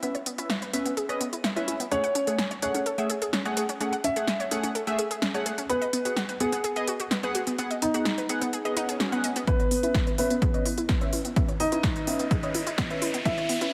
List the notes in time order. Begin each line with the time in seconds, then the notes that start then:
0.03 B3 C#4 B4 E5, closed hi-hat
0.15 C#5, closed hi-hat
0.26 B3, closed hi-hat
0.38 C#4 E4 B4 E5, closed hi-hat
0.50 E5, snare, closed hi-hat
0.62 B4, closed hi-hat
0.73 B3 C#4 B4 E5, closed hi-hat
0.86 B3, closed hi-hat
0.97 G#4, closed hi-hat
1.09 C#4 B4 C#5 D#5, closed hi-hat
1.21 B3, closed hi-hat
1.33 E4, closed hi-hat
1.44 E5, snare, closed hi-hat
1.56 C#4 E4 B4 E5, closed hi-hat
1.68 E4, closed hi-hat
1.80 B3, closed hi-hat
1.91 A3 C#4 G#4 C#5 F#5, closed hi-hat
2.04 F#5, closed hi-hat
2.15 C#4, closed hi-hat
2.27 A3 G#4 F#5, closed hi-hat
2.39 G#5, snare, closed hi-hat
2.51 C#5, closed hi-hat
2.62 A3 C#4 G#4 C#5 F#5, closed hi-hat
2.75 C#4, closed hi-hat
2.86 A4, closed hi-hat
2.98 A3 G#4 E5 F#5, closed hi-hat
3.10 G#4, closed hi-hat
3.22 G#4, closed hi-hat
3.33 C#4, snare, closed hi-hat
3.45 A3 G#4 C#5 F#5, closed hi-hat
3.57 G#4, closed hi-hat
3.69 C#4, closed hi-hat
3.81 A3 C#4 G#4 F#5, closed hi-hat
3.93 F#5, closed hi-hat
4.04 C#4 E5, closed hi-hat
4.16 A3 G#4 F#5, closed hi-hat
4.28 G#5, snare, closed hi-hat
4.40 C#5, closed hi-hat
4.51 A3 C#4 G#4 F#5, closed hi-hat
4.63 C#4, closed hi-hat
4.75 A4, closed hi-hat
4.87 A3 G#4 E5 F#5, closed hi-hat
4.99 G#4, closed hi-hat
5.11 G#4, closed hi-hat
5.22 C#4, snare, closed hi-hat
5.34 A3 G#4 C#5 F#5, closed hi-hat
5.46 G#4, closed hi-hat
5.58 C#4, closed hi-hat
5.69 B3 G#4 B4 F#5, closed hi-hat
5.82 D#5, closed hi-hat
5.93 B3, closed hi-hat
6.05 B3 F#4 G#4 F#5, closed hi-hat
6.17 F#5, snare, closed hi-hat
6.29 B4, closed hi-hat
6.40 B3 G#4 F#5, closed hi-hat
6.52 B3, closed hi-hat
6.64 G#4, closed hi-hat
6.76 B3 G#4 D#5, closed hi-hat
6.88 F#4, closed hi-hat
7.00 F#4, closed hi-hat
7.11 B3, snare, closed hi-hat
7.23 B3 G#4 B4 F#5, closed hi-hat
7.35 F#4, closed hi-hat
7.47 B3, closed hi-hat
7.58 B3 G#4 F#5, closed hi-hat
7.71 D#5, closed hi-hat
7.82 B3 D#4, closed hi-hat
7.94 B3 F#4 G#4 F#5, closed hi-hat
8.05 F#5, snare, closed hi-hat
8.18 B4, closed hi-hat
8.29 B3 G#4 F#5, closed hi-hat
8.42 B3, closed hi-hat
8.53 G#4, closed hi-hat, swell
8.65 B3 G#4 D#5, closed hi-hat
8.77 B3 D#4 G#4 F#5, closed hi-hat
8.89 G#4, closed hi-hat
9.00 F#4, snare, closed hi-hat
9.12 B3 G#4 F#5, closed hi-hat
9.24 D#5, closed hi-hat
9.36 B3, closed hi-hat
9.47 B3 C#4 B4 E5, kick, closed hi-hat, riser
9.60 C#5, closed hi-hat
9.71 B3, open hi-hat
9.83 C#4 E4 B4 E5, closed hi-hat
9.95 E5, kick, snare, closed hi-hat
10.07 B4, closed hi-hat
10.18 B3 C#4 B4 E5, open hi-hat
10.30 B3, closed hi-hat
10.42 G#4, kick, closed hi-hat
10.54 C#4 B4 C#5 D#5, closed hi-hat
10.66 E4, open hi-hat
10.78 E4, closed hi-hat
10.89 B3, kick, snare, closed hi-hat
11.01 C#4 B4 E5, closed hi-hat
11.13 E4, open hi-hat
11.25 B3, closed hi-hat
11.36 B3 C#4 B4 E5, kick, closed hi-hat
11.48 C#5, closed hi-hat
11.60 B3 D#4 D#5, open hi-hat
11.72 C#4 E4 B4 E5, closed hi-hat
11.83 E5, kick, snare, closed hi-hat
11.96 B4, closed hi-hat
12.07 B3 C#4 B4 E5, open hi-hat
12.19 B3, closed hi-hat
12.31 G#4, kick, closed hi-hat
12.43 C#4 B4 C#5 D#5, closed hi-hat
12.54 E4, open hi-hat
12.67 E4, closed hi-hat
12.78 B3, kick, snare, closed hi-hat
12.90 C#4 B4 E5, closed hi-hat
13.02 E4, open hi-hat
13.14 B3, closed hi-hat
13.25 B3 C#4 E4 B4 E5, kick, closed hi-hat
13.38 C#5, closed hi-hat
13.49 B3, open hi-hat
13.61 C#4 E4 B4 E5, closed hi-hat